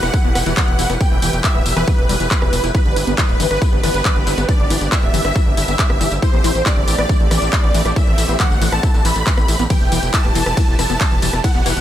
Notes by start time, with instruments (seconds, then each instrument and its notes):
Already playing: supersaw synth E3 E4 G4 B4
0.03 analog synth bass E1, supersaw synth F#5, cross-stick, closed hi-hat, tambourine
0.14 synth arpeggio sound E4, kick, closed hi-hat, tambourine
0.24 analog synth bass E1, synth arpeggio sound B3, closed hi-hat
0.35 analog synth bass E1, supersaw synth F#5, cross-stick, open hi-hat, tambourine
0.46 analog synth bass E1, synth arpeggio sound E3, closed hi-hat, tambourine
0.57 synth arpeggio sound E3, kick, clap, closed hi-hat, tambourine
0.68 analog synth bass E1, closed hi-hat
0.79 analog synth bass E1, synth arpeggio sound E4, open hi-hat, tambourine
0.90 analog synth bass E1, synth arpeggio sound B3, cross-stick, closed hi-hat, tambourine
1.01 supersaw synth G5, kick, closed hi-hat, tambourine
1.11 analog synth bass E1, synth arpeggio sound E3, closed hi-hat
1.22 analog synth bass E1, synth arpeggio sound E3, open hi-hat, tambourine
1.33 analog synth bass E1, closed hi-hat, tambourine
1.44 synth arpeggio sound E4, supersaw synth E5, kick, clap, closed hi-hat, tambourine
1.55 analog synth bass D1, synth arpeggio sound B3, closed hi-hat
1.66 analog synth bass E1, open hi-hat, tambourine
1.77 analog synth bass E1, synth arpeggio sound E3, supersaw synth B4, cross-stick, closed hi-hat, tambourine
1.87 synth arpeggio sound E3, kick, closed hi-hat, tambourine
1.98 analog synth bass E1, closed hi-hat
2.09 analog synth bass E1, synth arpeggio sound G3, supersaw synth B4, open hi-hat, tambourine
2.20 analog synth bass E1, synth arpeggio sound E3, closed hi-hat, tambourine
2.31 synth arpeggio sound E2, kick, clap, closed hi-hat, tambourine
2.42 analog synth bass E1, synth arpeggio sound E2, cross-stick, closed hi-hat
2.53 analog synth bass E1, synth arpeggio sound E3, open hi-hat, tambourine
2.64 analog synth bass E1, synth arpeggio sound E4, closed hi-hat, tambourine
2.74 synth arpeggio sound E3, supersaw synth B3 D4 G4 B4, kick, closed hi-hat, tambourine
2.86 analog synth bass G1, closed hi-hat
2.96 analog synth bass G1, synth arpeggio sound E4, open hi-hat, tambourine
3.07 analog synth bass G1, synth arpeggio sound B3, closed hi-hat, tambourine
3.18 synth arpeggio sound E3, supersaw synth B4, kick, clap, closed hi-hat, tambourine
3.29 analog synth bass D1, closed hi-hat
3.40 analog synth bass G1, synth arpeggio sound E3, open hi-hat, tambourine
3.51 analog synth bass G1, supersaw synth B4, cross-stick, closed hi-hat, tambourine
3.62 synth arpeggio sound E4, kick, closed hi-hat, tambourine
3.72 analog synth bass G1, synth arpeggio sound B3, closed hi-hat
3.83 analog synth bass G1, synth arpeggio sound E3, supersaw synth B4, cross-stick, open hi-hat, tambourine
3.94 analog synth bass G1, closed hi-hat, tambourine
4.05 synth arpeggio sound E3, kick, clap, closed hi-hat, tambourine
4.16 analog synth bass G1, closed hi-hat
4.27 analog synth bass G1, synth arpeggio sound E4, open hi-hat, tambourine
4.38 analog synth bass G1, synth arpeggio sound B3, cross-stick, closed hi-hat, tambourine
4.48 synth arpeggio sound E3, supersaw synth D5, kick, closed hi-hat, tambourine
4.59 analog synth bass G1, closed hi-hat
4.70 analog synth bass G1, synth arpeggio sound E3, open hi-hat, tambourine
4.81 analog synth bass G1, closed hi-hat, tambourine
4.92 synth arpeggio sound E4, supersaw synth E5, kick, clap, closed hi-hat, tambourine
5.03 analog synth bass D1, synth arpeggio sound B3, closed hi-hat
5.14 analog synth bass G1, synth arpeggio sound E3, open hi-hat, tambourine
5.25 analog synth bass G1, supersaw synth E5, cross-stick, closed hi-hat, tambourine
5.36 synth arpeggio sound E3, kick, closed hi-hat, tambourine
5.46 analog synth bass G1, closed hi-hat
5.57 analog synth bass G1, synth arpeggio sound E4, supersaw synth E5, open hi-hat, tambourine
5.68 analog synth bass G1, synth arpeggio sound B3, closed hi-hat, tambourine
5.79 synth arpeggio sound E3, kick, clap, closed hi-hat, tambourine
5.90 analog synth bass G1, cross-stick, closed hi-hat
6.01 analog synth bass G1, synth arpeggio sound E3, open hi-hat, tambourine
6.12 analog synth bass G1, closed hi-hat, tambourine
6.22 supersaw synth A3 C4 C5, synth arpeggio sound E4, kick, closed hi-hat, tambourine
6.33 analog synth bass A1, synth arpeggio sound B3, closed hi-hat
6.44 analog synth bass A1, synth arpeggio sound E3, open hi-hat, tambourine
6.55 analog synth bass A1, closed hi-hat, tambourine
6.66 synth arpeggio sound E3, supersaw synth D5, kick, clap, closed hi-hat, tambourine
6.77 analog synth bass G1, closed hi-hat
6.88 analog synth bass A1, synth arpeggio sound E4, open hi-hat, tambourine
6.98 analog synth bass A1, synth arpeggio sound B3, supersaw synth D5, cross-stick, closed hi-hat
7.09 synth arpeggio sound E3, kick, closed hi-hat, tambourine
7.20 analog synth bass A1, closed hi-hat
7.31 analog synth bass A1, synth arpeggio sound E3, supersaw synth D5, cross-stick, open hi-hat, tambourine
7.42 analog synth bass A1, closed hi-hat, tambourine
7.53 synth arpeggio sound E4, kick, clap, closed hi-hat, tambourine
7.64 analog synth bass A1, synth arpeggio sound B3, closed hi-hat
7.74 analog synth bass A1, synth arpeggio sound E3, open hi-hat, tambourine
7.85 analog synth bass A1, cross-stick, closed hi-hat, tambourine
7.96 synth arpeggio sound E3, supersaw synth E5, kick, closed hi-hat, tambourine
8.07 analog synth bass A1, closed hi-hat
8.18 analog synth bass A1, synth arpeggio sound E4, open hi-hat, tambourine
8.29 analog synth bass A1, synth arpeggio sound B3, closed hi-hat, tambourine
8.40 synth arpeggio sound E3, supersaw synth F#5, kick, clap, closed hi-hat, tambourine
8.50 analog synth bass G1, closed hi-hat, tambourine
8.61 analog synth bass A1, synth arpeggio sound E3, open hi-hat, tambourine
8.72 analog synth bass A1, supersaw synth A5, cross-stick, closed hi-hat, tambourine
8.83 synth arpeggio sound E4, kick, closed hi-hat, tambourine
8.94 analog synth bass A1, synth arpeggio sound B3, closed hi-hat, tambourine
9.05 analog synth bass A1, synth arpeggio sound E3, supersaw synth B5, open hi-hat, tambourine
9.16 analog synth bass A1, closed hi-hat, tambourine
9.27 synth arpeggio sound E3, kick, clap, closed hi-hat, tambourine
9.37 analog synth bass A1, cross-stick, closed hi-hat, tambourine
9.48 analog synth bass A1, synth arpeggio sound E4, open hi-hat, tambourine
9.59 analog synth bass A1, synth arpeggio sound B3, closed hi-hat, tambourine
9.70 synth arpeggio sound E3, supersaw synth E3 E4 G4 B4 G5, kick, closed hi-hat, ride, tambourine
9.81 analog synth bass E1, closed hi-hat
9.92 analog synth bass E1, synth arpeggio sound E3, open hi-hat, tambourine
10.03 analog synth bass E1, closed hi-hat, tambourine
10.14 synth arpeggio sound E4, supersaw synth A5, kick, clap, closed hi-hat, ride, tambourine
10.24 analog synth bass D1, synth arpeggio sound B3, closed hi-hat
10.35 analog synth bass E1, synth arpeggio sound E3, open hi-hat, tambourine
10.46 analog synth bass E1, supersaw synth A5, cross-stick, closed hi-hat, tambourine
10.57 synth arpeggio sound E3, kick, closed hi-hat, ride, tambourine
10.68 analog synth bass E1, closed hi-hat
10.79 analog synth bass E1, synth arpeggio sound E4, supersaw synth A5, cross-stick, open hi-hat, tambourine
10.90 analog synth bass E1, synth arpeggio sound B3, closed hi-hat, tambourine
11.01 synth arpeggio sound E3, kick, clap, closed hi-hat, ride, tambourine
11.12 analog synth bass E1, closed hi-hat
11.22 analog synth bass E1, synth arpeggio sound E3, open hi-hat, tambourine
11.33 analog synth bass E1, cross-stick, closed hi-hat, tambourine
11.44 synth arpeggio sound E4, supersaw synth F#5, kick, closed hi-hat, ride, tambourine
11.55 analog synth bass E1, synth arpeggio sound B3, closed hi-hat
11.66 analog synth bass E1, synth arpeggio sound E3, open hi-hat, tambourine
11.77 analog synth bass E1, closed hi-hat, tambourine